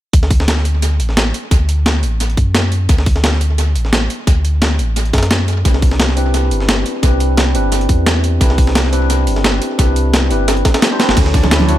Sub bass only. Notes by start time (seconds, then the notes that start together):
0.13 D2
1.00 A1
1.51 D2
2.03 A1
2.37 F#2
2.89 D2
3.76 A1
4.27 D2
4.79 A1
5.13 F#2
5.65 C2
6.51 G1
7.03 C2
7.54 G1
7.89 E2
8.41 C2
9.27 G1
9.79 C2
10.31 G1
11.09 G1
11.17 D2